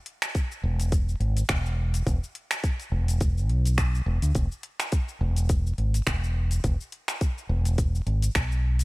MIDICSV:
0, 0, Header, 1, 3, 480
1, 0, Start_track
1, 0, Tempo, 571429
1, 1734, Time_signature, 4, 2, 24, 8
1, 7426, End_track
2, 0, Start_track
2, 0, Title_t, "Fretless electric bass"
2, 0, Program_c, 0, 35
2, 533, Note_on_c, 0, 28, 86
2, 963, Note_off_c, 0, 28, 0
2, 1009, Note_on_c, 0, 32, 77
2, 1188, Note_off_c, 0, 32, 0
2, 1254, Note_on_c, 0, 28, 83
2, 1683, Note_off_c, 0, 28, 0
2, 1735, Note_on_c, 0, 28, 96
2, 1829, Note_off_c, 0, 28, 0
2, 2450, Note_on_c, 0, 28, 87
2, 2934, Note_off_c, 0, 28, 0
2, 2934, Note_on_c, 0, 35, 82
2, 3363, Note_off_c, 0, 35, 0
2, 3412, Note_on_c, 0, 28, 93
2, 3507, Note_off_c, 0, 28, 0
2, 3548, Note_on_c, 0, 38, 81
2, 3622, Note_off_c, 0, 38, 0
2, 3656, Note_on_c, 0, 28, 97
2, 3749, Note_off_c, 0, 28, 0
2, 4375, Note_on_c, 0, 28, 90
2, 4804, Note_off_c, 0, 28, 0
2, 4856, Note_on_c, 0, 32, 70
2, 5032, Note_off_c, 0, 32, 0
2, 5097, Note_on_c, 0, 28, 80
2, 5525, Note_off_c, 0, 28, 0
2, 5578, Note_on_c, 0, 28, 102
2, 5670, Note_off_c, 0, 28, 0
2, 6295, Note_on_c, 0, 28, 92
2, 6724, Note_off_c, 0, 28, 0
2, 6775, Note_on_c, 0, 32, 78
2, 6951, Note_off_c, 0, 32, 0
2, 7016, Note_on_c, 0, 35, 80
2, 7426, Note_off_c, 0, 35, 0
2, 7426, End_track
3, 0, Start_track
3, 0, Title_t, "Drums"
3, 50, Note_on_c, 9, 42, 53
3, 134, Note_off_c, 9, 42, 0
3, 185, Note_on_c, 9, 26, 79
3, 185, Note_on_c, 9, 42, 40
3, 192, Note_on_c, 9, 69, 69
3, 269, Note_off_c, 9, 26, 0
3, 269, Note_off_c, 9, 42, 0
3, 276, Note_off_c, 9, 69, 0
3, 292, Note_on_c, 9, 42, 55
3, 294, Note_on_c, 9, 36, 112
3, 300, Note_on_c, 9, 69, 55
3, 376, Note_off_c, 9, 42, 0
3, 378, Note_off_c, 9, 36, 0
3, 384, Note_off_c, 9, 69, 0
3, 434, Note_on_c, 9, 69, 37
3, 518, Note_off_c, 9, 69, 0
3, 668, Note_on_c, 9, 42, 43
3, 676, Note_on_c, 9, 69, 71
3, 752, Note_off_c, 9, 42, 0
3, 760, Note_off_c, 9, 69, 0
3, 773, Note_on_c, 9, 42, 58
3, 775, Note_on_c, 9, 36, 115
3, 781, Note_on_c, 9, 69, 61
3, 857, Note_off_c, 9, 42, 0
3, 859, Note_off_c, 9, 36, 0
3, 865, Note_off_c, 9, 69, 0
3, 913, Note_on_c, 9, 69, 37
3, 997, Note_off_c, 9, 69, 0
3, 1013, Note_on_c, 9, 42, 32
3, 1097, Note_off_c, 9, 42, 0
3, 1148, Note_on_c, 9, 42, 44
3, 1155, Note_on_c, 9, 69, 71
3, 1232, Note_off_c, 9, 42, 0
3, 1239, Note_off_c, 9, 69, 0
3, 1250, Note_on_c, 9, 26, 79
3, 1250, Note_on_c, 9, 42, 54
3, 1255, Note_on_c, 9, 36, 114
3, 1258, Note_on_c, 9, 69, 58
3, 1334, Note_off_c, 9, 26, 0
3, 1334, Note_off_c, 9, 42, 0
3, 1339, Note_off_c, 9, 36, 0
3, 1342, Note_off_c, 9, 69, 0
3, 1393, Note_on_c, 9, 69, 34
3, 1477, Note_off_c, 9, 69, 0
3, 1629, Note_on_c, 9, 42, 45
3, 1637, Note_on_c, 9, 69, 72
3, 1713, Note_off_c, 9, 42, 0
3, 1721, Note_off_c, 9, 69, 0
3, 1735, Note_on_c, 9, 36, 100
3, 1737, Note_on_c, 9, 42, 51
3, 1744, Note_on_c, 9, 69, 54
3, 1819, Note_off_c, 9, 36, 0
3, 1821, Note_off_c, 9, 42, 0
3, 1828, Note_off_c, 9, 69, 0
3, 1878, Note_on_c, 9, 69, 34
3, 1962, Note_off_c, 9, 69, 0
3, 1975, Note_on_c, 9, 42, 51
3, 2059, Note_off_c, 9, 42, 0
3, 2106, Note_on_c, 9, 26, 75
3, 2106, Note_on_c, 9, 42, 43
3, 2114, Note_on_c, 9, 69, 67
3, 2190, Note_off_c, 9, 26, 0
3, 2190, Note_off_c, 9, 42, 0
3, 2198, Note_off_c, 9, 69, 0
3, 2214, Note_on_c, 9, 42, 53
3, 2215, Note_on_c, 9, 36, 106
3, 2222, Note_on_c, 9, 69, 54
3, 2298, Note_off_c, 9, 42, 0
3, 2299, Note_off_c, 9, 36, 0
3, 2306, Note_off_c, 9, 69, 0
3, 2349, Note_on_c, 9, 42, 30
3, 2356, Note_on_c, 9, 69, 38
3, 2433, Note_off_c, 9, 42, 0
3, 2440, Note_off_c, 9, 69, 0
3, 2590, Note_on_c, 9, 42, 44
3, 2597, Note_on_c, 9, 69, 71
3, 2674, Note_off_c, 9, 42, 0
3, 2681, Note_off_c, 9, 69, 0
3, 2693, Note_on_c, 9, 42, 52
3, 2696, Note_on_c, 9, 36, 120
3, 2700, Note_on_c, 9, 69, 63
3, 2777, Note_off_c, 9, 42, 0
3, 2780, Note_off_c, 9, 36, 0
3, 2784, Note_off_c, 9, 69, 0
3, 2835, Note_on_c, 9, 69, 33
3, 2919, Note_off_c, 9, 69, 0
3, 2935, Note_on_c, 9, 42, 28
3, 3019, Note_off_c, 9, 42, 0
3, 3070, Note_on_c, 9, 42, 44
3, 3078, Note_on_c, 9, 69, 72
3, 3154, Note_off_c, 9, 42, 0
3, 3162, Note_off_c, 9, 69, 0
3, 3174, Note_on_c, 9, 26, 77
3, 3174, Note_on_c, 9, 42, 51
3, 3176, Note_on_c, 9, 36, 103
3, 3181, Note_on_c, 9, 69, 59
3, 3258, Note_off_c, 9, 26, 0
3, 3258, Note_off_c, 9, 42, 0
3, 3260, Note_off_c, 9, 36, 0
3, 3265, Note_off_c, 9, 69, 0
3, 3316, Note_on_c, 9, 69, 37
3, 3400, Note_off_c, 9, 69, 0
3, 3548, Note_on_c, 9, 42, 42
3, 3555, Note_on_c, 9, 69, 65
3, 3632, Note_off_c, 9, 42, 0
3, 3639, Note_off_c, 9, 69, 0
3, 3652, Note_on_c, 9, 42, 50
3, 3656, Note_on_c, 9, 36, 108
3, 3660, Note_on_c, 9, 69, 56
3, 3736, Note_off_c, 9, 42, 0
3, 3740, Note_off_c, 9, 36, 0
3, 3744, Note_off_c, 9, 69, 0
3, 3795, Note_on_c, 9, 69, 36
3, 3879, Note_off_c, 9, 69, 0
3, 3891, Note_on_c, 9, 42, 51
3, 3975, Note_off_c, 9, 42, 0
3, 4029, Note_on_c, 9, 26, 74
3, 4029, Note_on_c, 9, 42, 39
3, 4037, Note_on_c, 9, 69, 67
3, 4113, Note_off_c, 9, 26, 0
3, 4113, Note_off_c, 9, 42, 0
3, 4121, Note_off_c, 9, 69, 0
3, 4133, Note_on_c, 9, 42, 52
3, 4137, Note_on_c, 9, 36, 110
3, 4140, Note_on_c, 9, 69, 52
3, 4217, Note_off_c, 9, 42, 0
3, 4221, Note_off_c, 9, 36, 0
3, 4224, Note_off_c, 9, 69, 0
3, 4271, Note_on_c, 9, 69, 36
3, 4355, Note_off_c, 9, 69, 0
3, 4507, Note_on_c, 9, 42, 44
3, 4514, Note_on_c, 9, 69, 65
3, 4591, Note_off_c, 9, 42, 0
3, 4598, Note_off_c, 9, 69, 0
3, 4613, Note_on_c, 9, 42, 56
3, 4617, Note_on_c, 9, 36, 115
3, 4621, Note_on_c, 9, 69, 55
3, 4697, Note_off_c, 9, 42, 0
3, 4701, Note_off_c, 9, 36, 0
3, 4705, Note_off_c, 9, 69, 0
3, 4761, Note_on_c, 9, 69, 33
3, 4845, Note_off_c, 9, 69, 0
3, 4856, Note_on_c, 9, 42, 30
3, 4940, Note_off_c, 9, 42, 0
3, 4991, Note_on_c, 9, 42, 42
3, 4999, Note_on_c, 9, 69, 72
3, 5075, Note_off_c, 9, 42, 0
3, 5083, Note_off_c, 9, 69, 0
3, 5096, Note_on_c, 9, 26, 79
3, 5096, Note_on_c, 9, 42, 56
3, 5098, Note_on_c, 9, 36, 102
3, 5103, Note_on_c, 9, 69, 54
3, 5180, Note_off_c, 9, 26, 0
3, 5180, Note_off_c, 9, 42, 0
3, 5182, Note_off_c, 9, 36, 0
3, 5187, Note_off_c, 9, 69, 0
3, 5239, Note_on_c, 9, 69, 34
3, 5323, Note_off_c, 9, 69, 0
3, 5467, Note_on_c, 9, 42, 42
3, 5475, Note_on_c, 9, 69, 68
3, 5551, Note_off_c, 9, 42, 0
3, 5559, Note_off_c, 9, 69, 0
3, 5576, Note_on_c, 9, 42, 57
3, 5578, Note_on_c, 9, 36, 103
3, 5584, Note_on_c, 9, 69, 52
3, 5660, Note_off_c, 9, 42, 0
3, 5662, Note_off_c, 9, 36, 0
3, 5668, Note_off_c, 9, 69, 0
3, 5717, Note_on_c, 9, 69, 33
3, 5801, Note_off_c, 9, 69, 0
3, 5815, Note_on_c, 9, 42, 51
3, 5899, Note_off_c, 9, 42, 0
3, 5948, Note_on_c, 9, 26, 68
3, 5948, Note_on_c, 9, 42, 45
3, 5956, Note_on_c, 9, 69, 59
3, 6032, Note_off_c, 9, 26, 0
3, 6032, Note_off_c, 9, 42, 0
3, 6040, Note_off_c, 9, 69, 0
3, 6057, Note_on_c, 9, 42, 53
3, 6058, Note_on_c, 9, 36, 101
3, 6064, Note_on_c, 9, 69, 53
3, 6141, Note_off_c, 9, 42, 0
3, 6142, Note_off_c, 9, 36, 0
3, 6148, Note_off_c, 9, 69, 0
3, 6200, Note_on_c, 9, 69, 31
3, 6284, Note_off_c, 9, 69, 0
3, 6429, Note_on_c, 9, 42, 43
3, 6437, Note_on_c, 9, 69, 66
3, 6513, Note_off_c, 9, 42, 0
3, 6521, Note_off_c, 9, 69, 0
3, 6536, Note_on_c, 9, 42, 54
3, 6537, Note_on_c, 9, 36, 109
3, 6543, Note_on_c, 9, 69, 56
3, 6620, Note_off_c, 9, 42, 0
3, 6621, Note_off_c, 9, 36, 0
3, 6627, Note_off_c, 9, 69, 0
3, 6680, Note_on_c, 9, 69, 32
3, 6764, Note_off_c, 9, 69, 0
3, 6776, Note_on_c, 9, 42, 32
3, 6860, Note_off_c, 9, 42, 0
3, 6908, Note_on_c, 9, 42, 47
3, 6916, Note_on_c, 9, 69, 71
3, 6992, Note_off_c, 9, 42, 0
3, 7000, Note_off_c, 9, 69, 0
3, 7014, Note_on_c, 9, 26, 72
3, 7014, Note_on_c, 9, 42, 56
3, 7018, Note_on_c, 9, 36, 98
3, 7022, Note_on_c, 9, 69, 57
3, 7098, Note_off_c, 9, 26, 0
3, 7098, Note_off_c, 9, 42, 0
3, 7102, Note_off_c, 9, 36, 0
3, 7106, Note_off_c, 9, 69, 0
3, 7155, Note_on_c, 9, 69, 33
3, 7239, Note_off_c, 9, 69, 0
3, 7386, Note_on_c, 9, 42, 42
3, 7393, Note_on_c, 9, 69, 66
3, 7426, Note_off_c, 9, 42, 0
3, 7426, Note_off_c, 9, 69, 0
3, 7426, End_track
0, 0, End_of_file